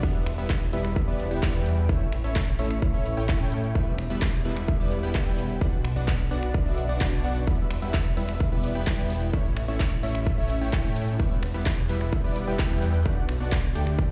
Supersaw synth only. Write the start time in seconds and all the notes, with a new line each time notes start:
0.03 G3 B3 E4 B4 E5
0.38 G3 B3 E4 B4 E5
0.73 G3 B3 E4 B4 E5
1.08 G3 B3 E4 B4 D5
1.31 G3 B3 E4 B4 G5
1.54 G3 B3 E4 B4 G5
1.89 A3 C#4 E4 C#5 E5
2.24 A3 C#4 E4 C#5 E5
2.59 A3 C#4 E4 C#5 E5
2.94 A3 C#4 E4 C#5 E5
3.17 A3 C#4 E4 C#5 G5
3.40 A3 C#4 E4 C#5 G5
3.75 G3 B3 E4 B4 E5
4.10 G3 B3 E4 B4 E5
4.45 G3 B3 E4 B4 E5
4.80 G3 B3 E4 B4 D5
5.03 G3 B3 E4 B4 G5
5.26 G3 B3 E4 B4 G5
5.61 B3 D4 F#4 D5 F#5
5.96 B3 D4 F#4 D5 F#5
6.31 B3 D4 F#4 D5 F#5
6.66 B3 D4 F#4 D5 E5
6.89 B3 D4 F#4 D5 F#5
7.12 B3 D4 F#4 D5 A5
7.24 B3 D4 F#4 D5 F#5
7.47 G3 B3 E4 B4 E5
7.82 G3 B3 E4 B4 E5
8.17 G3 B3 E4 B4 E5
8.52 G3 B3 E4 B4 D5
8.75 G3 B3 E4 B4 G5
8.98 G3 B3 E4 B4 G5
9.33 A3 C#4 E4 C#5 E5
9.68 A3 C#4 E4 C#5 E5
10.03 A3 C#4 E4 C#5 E5
10.38 A3 C#4 E4 C#5 E5
10.61 A3 C#4 E4 C#5 G5
10.85 A3 C#4 E4 C#5 G5
11.20 G3 B3 E4 B4 E5
11.54 G3 B3 E4 B4 E5
11.89 G3 B3 E4 B4 E5
12.24 G3 B3 E4 B4 D5
12.47 G3 B3 E4 B4 G5
12.71 G3 B3 E4 B4 G5
13.06 B3 D4 F#4 D5 F#5
13.41 B3 D4 F#4 D5 F#5
13.75 A3 D4 G4 D5 G5